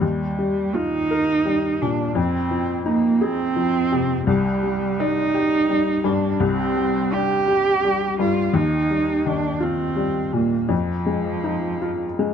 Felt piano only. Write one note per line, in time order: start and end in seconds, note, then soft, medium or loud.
0.01 2.13 D#2 medium
0.39 0.97 G3 soft
0.74 1.32 F4 medium
1.11 1.67 A#4 medium
1.45 2.02 G3 medium
1.82 2.17 A#2 soft
2.15 4.23 F2 medium
2.51 3.07 F3 medium
2.86 3.42 D#4 medium
3.21 3.78 G#4 medium
3.56 4.13 F3 medium
3.92 4.28 C3 medium
4.27 6.36 C2 medium
4.63 5.21 G3 soft
5.00 5.56 D5 medium
5.34 5.91 G4 medium
5.69 6.26 G3 medium
6.04 6.62 G2 medium
6.40 8.50 C2 medium
6.77 7.35 G3 soft
7.13 7.70 D4 medium
7.48 8.05 G4 medium
7.85 8.41 G3 medium
8.19 8.54 G2 medium
8.54 10.66 D#2 medium
8.91 9.47 G3 soft
9.26 9.83 D#3 medium
9.60 10.19 F4 medium
9.96 10.55 G3 medium
10.33 10.70 A#2 soft
10.69 12.34 F2 medium
11.06 11.66 G#3 soft
11.44 12.03 D#4 medium
11.82 12.34 F4 medium
12.19 12.34 G#3 medium